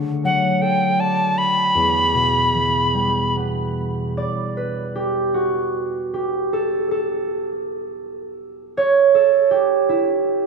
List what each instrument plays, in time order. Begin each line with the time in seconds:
Already playing: harp D3 A3 A4
0.24 harp F#3, tin whistle F#5
0.62 harp A4, tin whistle G5
0.99 harp D5, tin whistle A5
1.38 tin whistle B5
1.75 harp E2
2.14 harp B2
2.54 harp E3
2.94 harp G3
3.37 harp B3
4.17 harp D5
4.57 harp B4
4.96 harp G4
5.34 harp F#4
6.14 harp G4
6.53 harp A4
6.91 harp A4
8.77 harp C#5
9.15 harp A4
9.51 harp G4
9.89 harp E4